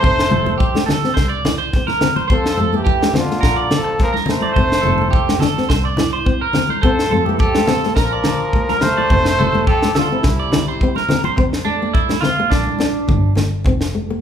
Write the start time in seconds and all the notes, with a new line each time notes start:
Already playing: A3 C5
0.00 F1 C4 C5, kick
0.19 snare
0.29 F1 A3 A4, high conga, low conga
0.46 A#3, high conga
0.58 G4, kick, high conga
0.75 A3, snare
0.86 D4 A4, snare, low conga
1.04 C4, snare
1.14 C2 C5, kick, snare
1.29 D5
1.45 E4, snare, low conga
1.58 C5
1.73 C4, kick, snare
1.87 A#4, snare, high conga
2.01 C4, snare, low conga
2.16 C5, high conga
2.28 F2 C4 C5, kick
2.32 F3 A4
2.46 snare
2.57 F2 A3 A4, high conga
2.73 E3 A#3 G4, high conga
2.84 G4, kick, high conga
3.02 A3, snare
3.13 C4, snare, low conga
3.18 D3 F4
3.31 A#3, snare
3.41 A#1 A#4, kick, snare
3.56 D5
3.71 F3 D4, snare, low conga
3.75 A4
3.84 muted clean electric guitar stroke
3.99 F3 A#3, kick, snare
4.03 A#4
4.13 A#4, snare, high conga
4.26 A3 A#3, snare, low conga
4.31 C5
4.41 D5, high conga
4.54 F1 C4 C5, kick
4.72 snare
4.81 A4, high conga
4.85 F1 A3
4.98 A#3, high conga
5.10 G4, kick, high conga
5.29 A3, snare
5.39 A4, snare, low conga
5.43 D4
5.58 C4, snare
5.69 C2 C5, kick, snare
5.85 D5
5.97 E4, snare, low conga
6.13 C5
6.26 C4, kick
6.41 A#4
6.53 C4, snare, low conga
6.69 C5, high conga
6.82 F2 F3 C4 A4 C5, kick
6.99 snare
7.10 F2 A3 A4, high conga
7.26 E3 A#3 G4, high conga
7.39 F3 G4 A4, kick, high conga
7.55 A3, snare
7.67 C4 A4, snare, low conga
7.83 A#3, snare
7.95 A#1 F3 A#4, kick, snare
8.13 D5
8.24 D4, snare, low conga
8.53 A#3, kick
8.69 A#4, snare, high conga
8.81 A3 A#3 C5, snare, low conga
8.97 D5, high conga
9.10 F1 C4, muted clean electric guitar stroke, kick
9.25 snare
9.39 F1 A3 A4, high conga, low conga
9.55 A#3, high conga
9.67 F3 G4 A4, kick
9.82 A3, snare
9.95 D3 D4 F4 A4, snare, low conga
10.12 C3 C4 E4
10.23 C2, muted clean electric guitar stroke, kick, snare
10.39 D5
10.52 E4, snare, low conga
10.68 C5
10.81 C4, kick
10.96 A#4, snare, high conga
11.09 C4, snare, low conga
11.24 C5, high conga
11.36 F2 C4, muted clean electric guitar stroke, kick, low conga
11.53 snare
11.65 A3 D4
11.82 A#3
11.93 E4, kick, high conga
12.09 A3, snare, high conga
12.21 C4 F4, snare, low conga
12.39 A#3
12.50 A#1 D4, kick, snare, high conga
12.67 high conga
12.79 D4, snare, high conga
13.08 G1 A#3, kick, low conga
13.35 A#3, snare, low conga
13.64 F1 C4, kick, low conga
13.81 snare
13.95 A3
14.10 A#3